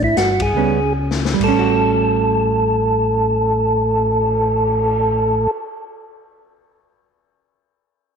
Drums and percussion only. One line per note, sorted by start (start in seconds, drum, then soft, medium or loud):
0.03 kick medium
0.17 snare medium
0.17 closed hi-hat soft
0.40 kick medium
0.40 ride medium
1.11 snare medium
1.25 snare medium
1.40 kick medium
1.40 crash medium
1.69 cymbal swell soft